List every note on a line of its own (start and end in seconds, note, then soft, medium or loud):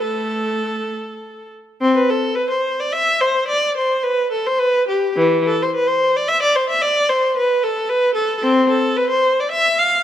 0.01 0.89 A3 medium
0.01 1.50 A4 medium
1.81 1.96 C4 loud
1.96 2.10 B4 medium
2.10 2.38 A4 medium
2.35 2.51 B4 medium
2.50 2.79 C5 medium
2.80 2.94 D5 medium
2.93 3.21 E5 loud
3.21 3.49 C5 medium
3.48 3.76 D5 medium
3.77 4.04 C5 medium
4.03 4.32 B4 medium
4.32 4.46 A4 medium
4.46 4.60 C5 medium
4.59 4.88 B4 medium
4.88 5.17 G4 medium
5.17 5.46 E3 medium
5.46 5.60 A4 medium
5.62 5.75 C5 medium
5.75 5.88 B4 medium
5.88 6.15 C5 medium
6.16 6.29 D5 medium
6.28 6.42 E5 loud
6.42 6.55 D5 medium
6.55 6.69 C5 medium
6.69 6.82 E5 medium
6.81 7.09 D5 loud
7.09 7.36 C5 medium
7.36 7.62 B4 medium
7.63 7.89 A4 medium
7.89 8.16 B4 loud
8.15 8.42 A4 medium
8.43 8.69 C4 loud
8.69 8.97 A4 medium
8.97 9.11 B4 medium
9.10 9.37 C5 medium
9.40 9.53 D5 medium
9.51 9.79 E5 loud
9.78 10.03 F5 loud